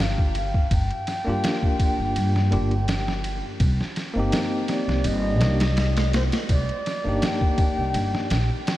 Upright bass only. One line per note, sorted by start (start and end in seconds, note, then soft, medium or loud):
0.00 0.51 G1 medium
0.71 0.88 G1 medium
1.27 1.42 G2 medium
1.99 2.14 G1 medium
2.16 2.54 G2 medium
2.52 3.40 G1 medium
3.60 3.77 C2 loud
4.16 4.31 G1 medium
4.88 5.03 C2 medium
5.05 5.41 G1 loud
5.41 6.29 C2 medium
6.50 6.67 C2 loud
7.05 7.20 G1 medium
7.78 7.93 C2 medium
7.94 8.11 G1 medium
8.31 8.48 A#1 medium